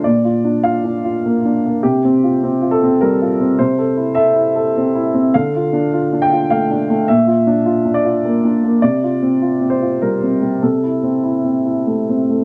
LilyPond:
\new Staff \with { instrumentName = "Upright piano" } { \time 3/4 \key a \phrygian \tempo 4 = 102 << { d''4 f''2 | g'4. a'8 bes'4 | c''4 e''2 | f''4. g''8 f''4 |
e''4. d''4 r8 | d''4. c''8 bes'4 | a'2~ a'8 r8 | } \\ { \tuplet 3/2 { bes,8 f'8 d'8 f'8 d'8 f'8 bes8 d'8 bes8 } | \tuplet 3/2 { c8 c'8 f'8 c'8 f'8 c'8 g8 f'8 c'8 } | \tuplet 3/2 { c8 a'8 e'8 a'8 e'8 a'8 c'8 e'8 c'8 } | \tuplet 3/2 { d8 f'8 d'8 f'8 d'8 f'8 a8 d'8 a8 } |
\tuplet 3/2 { bes,8 f'8 d'8 f'8 d'8 f'8 bes8 d'8 bes8 } | \tuplet 3/2 { c8 f'8 c'8 f'8 c'8 f'8 g8 c'8 g8 } | \tuplet 3/2 { c8 e'8 c'8 e'8 c'8 e'8 a8 c'8 a8 } | } >> }